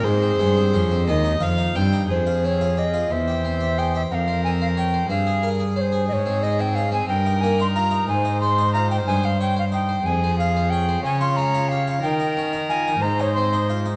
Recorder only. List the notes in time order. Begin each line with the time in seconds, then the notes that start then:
0.05 G#4
2.11 C5
2.45 C#5
2.78 D#5
3.12 E5
3.78 G5
3.96 E5
4.11 F5 F#5
4.44 G#5
4.62 F5
4.78 G5
5.10 F5
5.76 C#5
5.81 C5
6.08 D#5
6.13 C#5
6.43 D#5
6.61 G5
6.75 F5
6.93 G#5
7.08 G5
7.41 G#5
7.61 C6
7.75 A#5
8.09 G#5
8.41 C6
8.73 A#5
8.91 G5
9.07 G#5
9.25 F5
9.41 G5
9.59 F5
9.74 G5
10.06 G#5
10.38 F5
10.70 G5
11.04 G#5
11.21 C6
11.36 A#5
11.68 F5
12.02 G5
12.69 G#5
13.02 A#5
13.21 C#5
13.34 C6